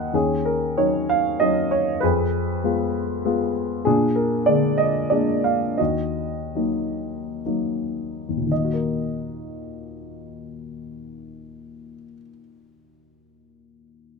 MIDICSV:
0, 0, Header, 1, 2, 480
1, 0, Start_track
1, 0, Key_signature, -6, "minor"
1, 0, Tempo, 633580
1, 100, Time_signature, 3, 2, 24, 8
1, 1536, Tempo, 608519
1, 3456, Tempo, 666667
1, 4416, Tempo, 760456
1, 4896, Tempo, 899550
1, 5376, Tempo, 1071429
1, 6816, Tempo, 1006711
1, 7776, Tempo, 1075269
1, 8451, End_track
2, 0, Start_track
2, 0, Title_t, "Grand piano"
2, 0, Program_c, 0, 0
2, 0, Control_c, 0, 64, 127
2, 0, Note_on_c, 0, 39, 67
2, 0, Note_on_c, 0, 54, 45
2, 0, Note_on_c, 0, 58, 41
2, 0, Note_on_c, 0, 63, 50
2, 0, Note_on_c, 0, 66, 62
2, 0, Note_on_c, 0, 70, 62
2, 0, Note_on_c, 0, 75, 47
2, 0, Note_on_c, 0, 78, 56
2, 101, Note_off_c, 0, 39, 0
2, 101, Note_on_c, 0, 39, 42
2, 110, Control_c, 0, 64, 0
2, 110, Note_on_c, 0, 68, 57
2, 113, Note_off_c, 0, 58, 0
2, 114, Note_off_c, 0, 63, 0
2, 114, Note_off_c, 0, 75, 0
2, 115, Note_on_c, 0, 61, 42
2, 117, Note_off_c, 0, 54, 0
2, 117, Note_off_c, 0, 66, 0
2, 117, Note_off_c, 0, 70, 0
2, 117, Note_off_c, 0, 78, 0
2, 240, Control_c, 0, 64, 127
2, 345, Note_on_c, 0, 70, 50
2, 360, Note_off_c, 0, 68, 0
2, 579, Note_off_c, 0, 61, 0
2, 588, Note_on_c, 0, 54, 33
2, 588, Note_on_c, 0, 73, 59
2, 590, Note_on_c, 0, 61, 31
2, 594, Note_on_c, 0, 63, 36
2, 598, Note_off_c, 0, 70, 0
2, 829, Note_on_c, 0, 77, 68
2, 836, Note_off_c, 0, 73, 0
2, 1049, Note_off_c, 0, 54, 0
2, 1051, Note_off_c, 0, 61, 0
2, 1052, Note_off_c, 0, 63, 0
2, 1058, Note_on_c, 0, 75, 66
2, 1064, Note_on_c, 0, 54, 34
2, 1067, Note_on_c, 0, 61, 32
2, 1067, Note_on_c, 0, 63, 38
2, 1072, Note_off_c, 0, 77, 0
2, 1297, Note_on_c, 0, 73, 58
2, 1303, Note_off_c, 0, 75, 0
2, 1506, Note_off_c, 0, 39, 0
2, 1518, Note_off_c, 0, 73, 0
2, 1519, Note_on_c, 0, 71, 59
2, 1521, Note_off_c, 0, 54, 0
2, 1522, Note_off_c, 0, 61, 0
2, 1522, Note_off_c, 0, 63, 0
2, 1538, Note_on_c, 0, 41, 50
2, 1538, Note_on_c, 0, 68, 42
2, 1546, Control_c, 0, 64, 0
2, 1697, Control_c, 0, 64, 127
2, 2016, Note_on_c, 0, 56, 37
2, 2020, Note_on_c, 0, 59, 32
2, 2024, Note_on_c, 0, 65, 40
2, 2481, Note_off_c, 0, 56, 0
2, 2483, Note_off_c, 0, 59, 0
2, 2485, Note_off_c, 0, 65, 0
2, 2501, Note_on_c, 0, 56, 40
2, 2502, Note_on_c, 0, 59, 36
2, 2506, Note_on_c, 0, 65, 43
2, 2696, Note_off_c, 0, 71, 0
2, 2706, Note_off_c, 0, 68, 0
2, 2944, Note_off_c, 0, 41, 0
2, 2961, Note_off_c, 0, 56, 0
2, 2962, Note_off_c, 0, 59, 0
2, 2964, Note_off_c, 0, 65, 0
2, 2974, Note_on_c, 0, 68, 61
2, 2983, Control_c, 0, 64, 0
2, 2986, Note_on_c, 0, 46, 47
2, 2986, Note_on_c, 0, 62, 44
2, 3137, Control_c, 0, 64, 127
2, 3215, Note_on_c, 0, 70, 53
2, 3220, Note_off_c, 0, 68, 0
2, 3456, Note_on_c, 0, 74, 63
2, 3463, Note_off_c, 0, 70, 0
2, 3466, Note_on_c, 0, 56, 34
2, 3468, Note_on_c, 0, 58, 30
2, 3472, Note_on_c, 0, 50, 37
2, 3658, Note_off_c, 0, 62, 0
2, 3666, Note_off_c, 0, 74, 0
2, 3682, Note_on_c, 0, 75, 60
2, 3911, Note_off_c, 0, 56, 0
2, 3912, Note_off_c, 0, 58, 0
2, 3914, Note_off_c, 0, 50, 0
2, 3915, Note_on_c, 0, 74, 53
2, 3925, Note_on_c, 0, 56, 32
2, 3926, Note_off_c, 0, 75, 0
2, 3928, Note_on_c, 0, 58, 28
2, 3931, Note_on_c, 0, 62, 36
2, 4161, Note_on_c, 0, 77, 55
2, 4170, Note_off_c, 0, 74, 0
2, 4391, Note_off_c, 0, 46, 0
2, 4402, Note_on_c, 0, 75, 52
2, 4403, Note_off_c, 0, 56, 0
2, 4405, Note_off_c, 0, 58, 0
2, 4406, Note_off_c, 0, 62, 0
2, 4411, Note_on_c, 0, 66, 37
2, 4420, Note_off_c, 0, 77, 0
2, 4423, Note_on_c, 0, 39, 36
2, 4424, Control_c, 0, 64, 0
2, 4514, Control_c, 0, 64, 127
2, 4895, Note_on_c, 0, 54, 25
2, 4898, Note_on_c, 0, 58, 23
2, 4901, Note_on_c, 0, 63, 27
2, 5349, Note_off_c, 0, 75, 0
2, 5352, Note_off_c, 0, 66, 0
2, 5361, Note_off_c, 0, 54, 0
2, 5362, Note_off_c, 0, 58, 0
2, 5364, Note_off_c, 0, 63, 0
2, 5376, Note_on_c, 0, 54, 23
2, 5378, Note_on_c, 0, 58, 22
2, 5379, Note_on_c, 0, 63, 27
2, 5742, Note_off_c, 0, 39, 0
2, 5749, Note_on_c, 0, 39, 26
2, 5788, Note_on_c, 0, 46, 24
2, 5829, Note_on_c, 0, 51, 22
2, 5835, Note_off_c, 0, 54, 0
2, 5835, Note_off_c, 0, 58, 0
2, 5836, Note_off_c, 0, 63, 0
2, 5851, Note_on_c, 0, 75, 37
2, 5855, Control_c, 0, 64, 0
2, 5871, Note_on_c, 0, 58, 22
2, 5910, Note_on_c, 0, 66, 25
2, 5927, Control_c, 0, 64, 127
2, 5949, Note_on_c, 0, 70, 29
2, 7422, Note_off_c, 0, 39, 0
2, 7463, Note_off_c, 0, 46, 0
2, 7508, Note_off_c, 0, 51, 0
2, 7531, Note_off_c, 0, 75, 0
2, 7552, Note_off_c, 0, 58, 0
2, 7593, Note_off_c, 0, 66, 0
2, 7635, Note_off_c, 0, 70, 0
2, 8451, End_track
0, 0, End_of_file